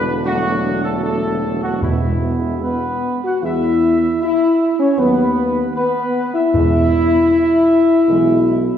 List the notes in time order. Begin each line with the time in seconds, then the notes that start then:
Already playing: E1 D3 D4
0.05 B4
0.24 F#3 A3 F#4
0.83 A4
1.03 A4
1.62 F#4
1.82 E2 B2 G#3 B3 E4
2.62 B3 B4
3.24 F#4 F#5
3.42 E2 E3 G#3 E4 E5
4.22 E4 E5
4.80 C#4 C#5
4.98 D#2 F#3 B3 B4
5.75 B3 B4
6.34 E4 E5
6.54 E2 E3 G#3
8.08 B1 E3 G#3